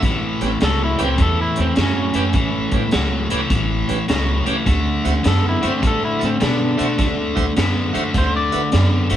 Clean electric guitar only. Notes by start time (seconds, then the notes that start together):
0.64 A4
0.84 E4
1.04 C4
1.22 A4
1.42 E4
1.61 C4
1.82 C#4
5.28 A4
5.49 E4
5.68 C4
5.87 A4
6.05 E4
6.25 C4
6.44 D4
8.18 C5
8.37 D5